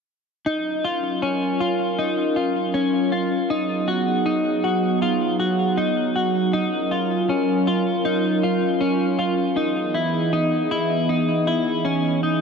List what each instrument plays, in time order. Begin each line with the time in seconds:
0.46 analog synth pad F#3 C#4 F4 A#4, clean electric guitar D#4
0.84 clean electric guitar F4
1.22 clean electric guitar C#4
1.60 clean electric guitar F4
1.99 clean electric guitar D#4
2.36 clean electric guitar F4
2.74 clean electric guitar C#4
3.12 clean electric guitar F4
3.50 analog synth pad B3 D#4 G#4, clean electric guitar D#4
3.88 clean electric guitar F#4
4.26 clean electric guitar D#4
4.64 clean electric guitar F#4
5.02 clean electric guitar F4
5.40 clean electric guitar F#4
5.77 clean electric guitar D#4
6.16 clean electric guitar F#4
6.53 analog synth pad C#4 F4 A#4, clean electric guitar D#4
6.91 clean electric guitar F4
7.29 clean electric guitar C#4
7.67 clean electric guitar F4
8.05 clean electric guitar D#4
8.43 clean electric guitar F4
8.81 clean electric guitar C#4
9.19 clean electric guitar F4
9.56 analog synth pad E3 B3 G#4 D#5, clean electric guitar D#4
9.94 clean electric guitar E4
10.33 clean electric guitar D#4
10.71 clean electric guitar E4
11.09 clean electric guitar D#4
11.47 clean electric guitar E4
11.85 clean electric guitar C#4
12.23 clean electric guitar D#4